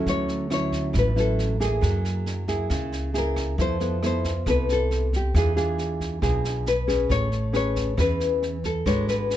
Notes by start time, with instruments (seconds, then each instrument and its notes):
Already playing: nylon-string guitar F#3 C#4 E4
0.06 upright bass D2, nylon-string guitar D3 C#5, kick, snare
0.28 snare
0.50 nylon-string guitar F#3 C#4 E4 C#5, cross-stick, snare
0.72 kick, snare
0.93 upright bass A1, nylon-string guitar A2, kick, cross-stick, snare
0.99 nylon-string guitar B4
1.16 nylon-string guitar F#3 C#4 E4, snare
1.20 nylon-string guitar A4
1.39 snare
1.60 nylon-string guitar A#3 E4 G#4, kick, snare
1.64 nylon-string guitar G#4
1.81 upright bass F#2, nylon-string guitar F#3, kick, cross-stick, snare
2.05 snare
2.26 snare
2.48 nylon-string guitar A#3 E4 G#4, kick, snare
2.70 upright bass C#2, nylon-string guitar C#3, kick, cross-stick, snare
2.92 snare
3.13 nylon-string guitar A#3 E4 G#4, snare
3.18 nylon-string guitar A#4
3.36 kick, cross-stick, snare
3.58 upright bass F2, nylon-string guitar F3 B3 E4 A4 C5, kick, snare
3.80 nylon-string guitar B3 E4 A4, snare
4.03 nylon-string guitar B3 E4 A4 C5, cross-stick, snare
4.24 kick, snare
4.46 upright bass C2, nylon-string guitar C3 B3 E4 A4 B4, kick, cross-stick, snare
4.69 nylon-string guitar A4, snare
4.91 snare
5.13 nylon-string guitar G4, kick, snare
5.34 upright bass E2, nylon-string guitar E3 D4 F4 G#4, kick, cross-stick, snare
5.56 nylon-string guitar D4 F4 G#4, snare
5.78 snare
6.00 kick, snare
6.21 upright bass B1, nylon-string guitar B2 D4 F4 G#4, kick, cross-stick, snare
6.44 snare
6.66 nylon-string guitar B4, snare
6.87 nylon-string guitar C#4 G#4 B4, kick, cross-stick, snare
7.09 upright bass A1, nylon-string guitar A3 C#5, kick, snare
7.32 snare
7.53 nylon-string guitar C#4 G#4 B4 C#5, cross-stick, snare
7.76 kick, snare
7.97 upright bass E2, nylon-string guitar E3 C#4 G#4 B4, kick, cross-stick, snare
8.20 snare
8.42 snare
8.64 nylon-string guitar A4, kick, snare
8.86 upright bass G#1, nylon-string guitar G#3 D4 F#4 B4 C#5, kick, cross-stick, snare
9.08 nylon-string guitar B4, snare
9.30 snare